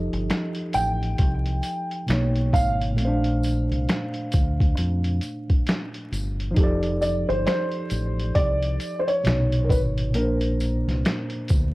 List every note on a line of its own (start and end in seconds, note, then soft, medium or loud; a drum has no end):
0.00 2.02 F3 medium
0.00 2.03 D#4 medium
0.00 2.05 G4 medium
0.00 2.06 A4 medium
0.00 0.78 D#5 medium
0.00 2.08 D#5 loud
0.13 0.28 G1 medium
0.13 closed hi-hat soft
0.30 finger snap medium
0.30 snare loud
0.30 closed hi-hat medium
0.55 closed hi-hat soft
0.73 1.15 A1 medium
0.73 2.05 G5 loud
0.73 closed hi-hat medium
0.73 tambourine medium
1.03 closed hi-hat soft
1.18 1.60 C2 medium
1.18 kick medium
1.18 closed hi-hat medium
1.46 closed hi-hat soft
1.63 closed hi-hat medium
1.63 tambourine soft
1.91 closed hi-hat soft
2.07 2.50 B1 loud
2.07 2.97 B2 medium
2.07 2.98 A#3 medium
2.07 snare medium
2.07 closed hi-hat medium
2.11 2.99 D#4 medium
2.11 3.00 C#5 medium
2.11 finger snap medium
2.36 closed hi-hat soft
2.53 2.99 G#1 medium
2.53 6.08 F5 loud
2.53 kick medium
2.53 closed hi-hat medium
2.53 tambourine medium
2.81 closed hi-hat soft
2.93 6.50 A#2 medium
2.93 6.52 A3 medium
2.98 3.67 A#1 medium
2.98 3.07 C4 medium
2.98 closed hi-hat medium
3.05 6.57 D4 medium
3.05 6.56 C5 medium
3.24 closed hi-hat medium
3.43 closed hi-hat medium
3.43 tambourine soft
3.71 3.87 C2 medium
3.71 closed hi-hat soft
3.89 finger snap medium
3.89 snare loud
3.89 closed hi-hat medium
4.14 closed hi-hat soft
4.32 4.74 D2 medium
4.32 kick medium
4.32 closed hi-hat medium
4.32 tambourine medium
4.60 kick medium
4.60 closed hi-hat soft
4.77 5.19 F2 loud
4.77 closed hi-hat medium
5.04 closed hi-hat medium
5.21 closed hi-hat medium
5.21 tambourine soft
5.50 kick medium
5.50 closed hi-hat soft
5.67 finger snap medium
5.67 snare loud
5.67 closed hi-hat medium
5.94 closed hi-hat soft
6.12 6.53 G1 medium
6.12 closed hi-hat medium
6.12 tambourine medium
6.40 closed hi-hat medium
6.51 9.18 F3 medium
6.51 9.20 D#4 medium
6.56 7.25 F1 medium
6.56 9.21 G4 medium
6.56 9.23 A4 medium
6.56 kick loud
6.56 closed hi-hat medium
6.63 9.25 D5 loud
6.83 closed hi-hat soft
7.01 7.29 D5 medium
7.01 closed hi-hat medium
7.01 tambourine soft
7.29 7.45 G1 medium
7.29 7.45 C5 medium
7.29 closed hi-hat soft
7.47 8.32 C5 loud
7.47 finger snap medium
7.47 snare loud
7.47 closed hi-hat medium
7.72 closed hi-hat soft
7.90 8.32 A1 medium
7.90 closed hi-hat medium
7.90 tambourine medium
8.20 closed hi-hat soft
8.35 8.76 C2 medium
8.35 9.01 D5 loud
8.35 kick medium
8.35 closed hi-hat medium
8.62 closed hi-hat soft
8.80 closed hi-hat medium
8.80 tambourine soft
8.99 9.08 C5 medium
9.08 9.60 C#5 medium
9.08 closed hi-hat soft
9.24 9.66 B1 loud
9.24 10.09 A#2 medium
9.24 10.14 B2 medium
9.24 finger snap medium
9.24 snare loud
9.24 closed hi-hat medium
9.28 10.16 D#4 medium
9.28 10.17 C#5 medium
9.53 closed hi-hat medium
9.65 9.70 A#4 medium
9.70 10.15 G#1 medium
9.70 9.80 B4 medium
9.70 kick medium
9.70 closed hi-hat medium
9.70 tambourine medium
9.98 closed hi-hat medium
10.10 11.74 A#2 medium
10.14 10.83 A#1 loud
10.14 11.74 A#3 medium
10.14 11.74 A#4 medium
10.14 closed hi-hat medium
10.18 11.74 D4 medium
10.23 11.74 C5 medium
10.41 closed hi-hat medium
10.60 closed hi-hat medium
10.60 tambourine soft
10.87 11.03 C2 medium
10.87 snare soft
10.87 closed hi-hat soft
11.05 finger snap medium
11.05 snare loud
11.05 closed hi-hat medium
11.30 closed hi-hat soft
11.48 11.74 D2 medium
11.48 kick loud
11.48 closed hi-hat medium
11.48 tambourine medium